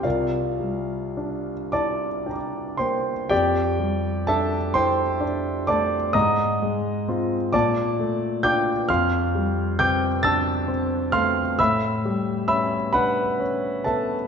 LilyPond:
<<
  \new Staff \with { instrumentName = "Grand piano" } { \time 6/8 \key f \major \tempo 4. = 43 << { <f' bes' d'' f''>4. <d'' a'' d'''>4 <c'' g'' c'''>8 | <g' d'' g''>4 <a' e'' a''>8 <c'' g'' c'''>4 <d'' a'' d'''>8 | <ees'' bes'' ees'''>4. <d'' a'' d'''>4 <g'' d''' g'''>8 | <f'' c''' f'''>4 <g'' d''' g'''>8 <a'' e''' a'''>4 <f'' c''' f'''>8 |
<e'' b'' e'''>4 <e'' b'' e'''>8 <b' ges'' b''>4 <a' e'' a''>8 | } \\ { r2 <g'' bes'' d'''>4 | r2. | r2. | r2. |
r2. | } >> }
  \new Staff \with { instrumentName = "Grand piano" } { \time 6/8 \key f \major c,8 g8 d'8 e'8 d'8 bes8 | f,8 g8 d'8 e'8 d'8 a8 | aes,8 aes8 <c' f'>8 bes,8 a8 <d' f'>8 | f,8 g8 c'8 d'8 c'8 a8 |
a,8 g8 cis'8 d'8 cis'8 b8 | }
>>